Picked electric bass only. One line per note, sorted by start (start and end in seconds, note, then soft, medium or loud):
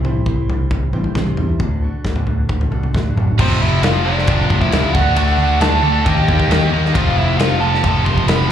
0.26 0.39 C2 medium
0.48 0.61 C2 medium
0.71 0.84 C2 medium
0.93 1.06 A1 medium
1.15 1.28 C2 medium
1.38 1.51 E2 medium
1.59 1.87 D2 medium
2.04 2.18 D2 medium
2.27 2.40 D2 medium
2.49 2.63 D2 medium
2.71 2.85 C2 medium
2.94 3.08 D2 medium
3.15 3.29 F#2 medium
3.39 3.59 F1 loud
3.60 3.82 F1 medium
3.83 4.26 F1 loud
4.28 4.49 F1 loud
4.50 4.72 F1 loud
4.72 4.94 C#2 medium
4.95 5.16 D2 loud
5.16 5.38 D2 loud
5.38 5.60 D2 loud
5.61 5.82 D2 loud
5.83 6.05 D2 medium
6.06 6.27 D#2 loud
6.28 6.49 D#2 loud
6.49 6.71 D#2 medium
6.72 6.94 D#2 medium
6.95 7.16 F1 loud
7.16 7.38 F1 medium
7.38 7.82 F1 loud
7.83 8.05 F1 loud
8.06 8.27 F1 loud
8.27 8.49 F1 medium